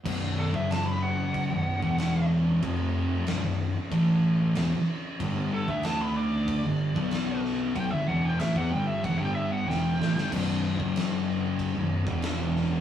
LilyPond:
<<
  \new Staff \with { instrumentName = "Lead electric guitar" } { \time 4/4 \key b \minor \tempo 4 = 94 r8 a'16 e''16 a''16 b''16 fis''2 r8 | r1 | r8 a'16 e''16 a''16 b''16 d''2 r8 | g''16 e''16 fis''16 g''16 e''16 fis''16 g''16 e''16 fis''16 g''16 e''16 fis''16 g''4 |
r1 | }
  \new Staff \with { instrumentName = "Distorted electric guitar" } { \clef bass \time 4/4 \key b \minor <b,, fis, b,>8. <fis, cis fis>4. <b,, fis,>8 <e, b, e>4~ <e, b, e>16 | <f, c f>4 <b,, fis,>16 <b,, fis,>8 r16 <a, e a>4 <e, b,>16 r8. | <g, d g>8. <d a d'>4. <g, d>8 <b, fis b>4~ <b, fis b>16 | <b, fis>16 <g, d>16 <e, b, e>8 <a, e>16 <e b>16 <g, d g>8 <e, b,>16 <g, d g>8. <e, b, e>8 <a, e>16 <g, d>16 |
<b,, fis, b,>8. <fis, cis fis>4. <b,, fis,>8 <e, b, e>4~ <e, b, e>16 | }
  \new Staff \with { instrumentName = "Distorted electric guitar" } { \clef bass \time 4/4 \key b \minor <b,, fis, b,>8. <fis, cis fis>4. <b,, fis,>8 <e, b, e>4~ <e, b, e>16 | <f, c f>4 <b,, fis,>16 <b,, fis,>8 r16 <a, e a>4 <e, b,>16 r8. | <g, d g>8. <d a d'>4. <g, d>8 <b, fis b>4~ <b, fis b>16 | <b, fis>16 <g, d>16 <e, b, e>8 <a, e>16 <e b>16 <g, d g>8 <e, b,>16 <g, d g>8. <e, b, e>8 <a, e>16 <g, d>16 |
<b,, fis, b,>8. <fis, cis fis>4. <b,, fis,>8 <e, b, e>4~ <e, b, e>16 | }
  \new Staff \with { instrumentName = "Distorted electric guitar" } { \clef bass \time 4/4 \key b \minor <b,, fis, b,>8. <fis, cis fis>4. <b,, fis,>8 <e, b, e>4~ <e, b, e>16 | <f, c f>4 <b,, fis,>16 <b,, fis,>8 r16 <a, e a>4 <e, b,>16 r8. | <g, d g>8. <d a d'>4. <g, d>8 <b, fis b>4~ <b, fis b>16 | <b, fis>16 <g, d>16 <e, b, e>8 <a, e>16 <e b>16 <g, d g>8 <e, b,>16 <g, d g>8. <e, b, e>8 <a, e>16 <g, d>16 |
<b,, fis, b,>8. <fis, cis fis>4. <b,, fis,>8 <e, b, e>4~ <e, b, e>16 | }
  \new Staff \with { instrumentName = "Fingered electric bass" } { \clef bass \time 4/4 \key b \minor b,,,8. fis,,4. b,,,8 e,,4~ e,,16 | f,,4 b,,,16 b,,,8 r16 a,,4 e,,16 r8. | g,,8. d,4. g,,8 b,,4~ b,,16 | b,,16 g,,16 e,,8 a,,16 e,16 g,,8 e,,16 g,,8. e,,8 a,,16 g,,16 |
b,,,8. fis,,4. b,,,8 e,,4~ e,,16 | }
  \new DrumStaff \with { instrumentName = "Drums" } \drummode { \time 4/4 <cymc bd>8. bd16 <cymc sn>4 <cymc bd>8. bd16 <cymc sn>4 | <cymc bd>4 <cymc sn>4 <cymc bd>4 <cymc sn>4 | <cymc bd>8. bd16 <cymc sn>4 <cymc bd>8. bd16 <cymc sn>8 sn8 | <cymc bd>4 <cymc sn>16 bd8. <cymc bd>4 sn8 sn16 sn16 |
<cymc bd>16 sn8 bd16 <cymc sn>4 <cymc bd>8. bd16 <cymc sn>8 sn8 | }
>>